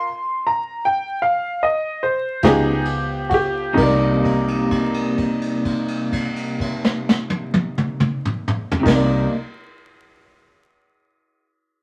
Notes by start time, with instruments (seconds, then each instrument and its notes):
Already playing: upright piano C6
0.47 upright piano A#5
0.85 upright piano G5
1.22 upright piano F5
1.63 upright piano D#5
2.03 upright piano C5
2.43 fingered electric bass C#2, clean electric guitar C#3 G#3 B3 F4, upright piano F3 B3 D#4 G4 G#4, kick, snare, ride
2.85 ride
3.29 upright piano F#4, kick, ride
3.34 upright piano G4
3.73 fingered electric bass C2, clean electric guitar C3, upright piano D#4, crash
3.77 clean electric guitar G3, upright piano A#4, kick
3.82 upright piano D5
3.87 clean electric guitar A#3
3.94 clean electric guitar D#4
4.24 kick, crash
4.48 crash
4.71 kick, crash
4.94 crash
5.18 kick, crash
5.42 crash
5.65 kick, crash
5.88 crash
6.12 kick, crash
6.36 crash
6.60 kick, crash
6.84 snare
7.09 snare
7.30 high tom
7.54 high tom
7.78 mid tom
8.00 mid tom
8.25 mid tom
8.48 mid tom
8.71 floor tom
8.80 clean electric guitar C3, upright piano D#4
8.85 fingered electric bass C2, clean electric guitar G3, upright piano A#4, kick, snare, crash
8.92 clean electric guitar A#3, upright piano D5
9.00 clean electric guitar D#4